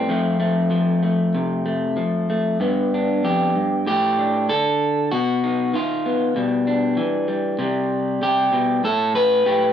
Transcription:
Already playing: C4
0.08 F2 F3 A3
0.40 A3
0.71 F3
1.03 A3
1.35 C3
1.66 A3
1.97 F3
2.30 A3
2.60 G2 B3
2.94 D4
3.24 F2 G4
3.56 G2
3.87 A2 G4
4.19 D4
4.49 D3 A4
5.12 B2 F#4
5.44 D#4
5.74 D#3 F4
6.06 B3
6.36 B2 G3
6.67 D4
6.97 E3
7.28 G3
7.59 C3 G3
8.22 C3 G4
8.53 B2
8.84 A2 A4
9.15 B4
9.45 A2 G4

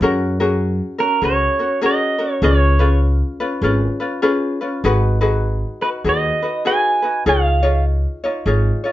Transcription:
0.01 F#2 C#4 F#4 G#4 A#4
0.40 C#4 F#4 G#4 A#4
0.98 C#4 F#4 A#4
1.21 C#2 C#4 F#4 G#4 A#4 C#5
1.59 C#4 F#4 A#4
1.81 C#4 F#4 G#4 A#4
1.86 D#5
2.18 C#4 F#4 A#4
2.32 C#5
2.42 C#2 C#4 F4 G#4 B4 C#5
2.79 C#4 F4 G#4 B4
3.40 C#4 F4 B4
3.62 G#1 C#4 F4 G#4 B4
4.00 C#4 F4 B4
4.22 C#4 F4 G#4 B4
4.61 C#4 F4 B4
4.84 G#1 D#4 F#4 G#4 B4
5.21 D#4 F#4 G#4 B4
5.81 D#4 F#4 B4
6.04 D#2 D#4 F#4 G#4 B4
6.09 D#5
6.42 D#4 F#4 B4
6.65 D#4 F#4 G#4 B4 G#5
7.02 D#4 F#4 B4
7.26 C#2 D#4 F4 G#4 C#5 F5
7.63 D#4 F4 G#4 C#5
8.24 D#4 F4 C#5
8.46 G#1 D#4 F4 G#4 C#5
8.84 D#4 F4 C#5

